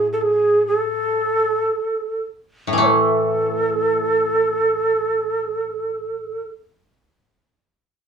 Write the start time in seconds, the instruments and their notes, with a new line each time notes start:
Already playing: koto A2
0.13 shakuhachi A4
0.21 shakuhachi G#4
0.67 shakuhachi A4
2.67 koto A2
2.73 koto E3
2.78 koto A3
2.82 shakuhachi C#5
2.86 shakuhachi A4